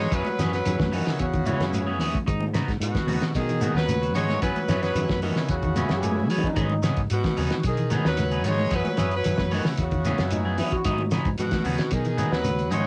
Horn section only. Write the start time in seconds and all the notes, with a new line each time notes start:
Already playing: C#5
0.14 B4
0.53 B4
0.95 F#4
1.20 F#4
2.82 F#4
3.37 G#4
3.76 B4
4.14 C#5
4.42 B4
4.83 B4
5.22 F#4
5.49 F#4
7.11 F#4
7.66 G#4
8.07 B4
8.47 C#5
8.75 B4
9.15 B4
9.55 F#4
9.83 F#4
11.40 F#4
11.91 G#4
12.31 B4
12.73 C#5